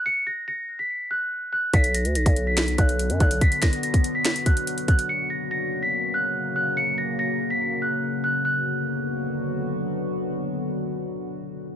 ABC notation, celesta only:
X:1
M:4/4
L:1/16
Q:1/4=143
K:Bm
V:1 name="Celesta"
c''2 ^a'2 a'3 b'3 f'4 f'2 | b'2 z2 ^a'3 b'3 f'4 f'2 | b'2 ^a'2 a'3 b'3 f'4 f'2 | c''2 ^a'2 a'3 b'3 f'4 f'2 |
c''2 ^a'2 a'3 b'3 f'4 f'2 | f'12 z4 | z16 |]